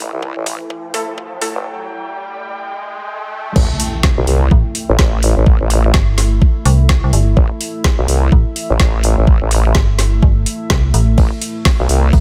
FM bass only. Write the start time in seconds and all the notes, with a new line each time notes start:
4.51 A1
5.94 G1
6.65 C2
7.04 C2
7.13 G1
8.32 A1
9.75 G1
10.22 G1
10.70 C2
10.94 A1
12.13 A1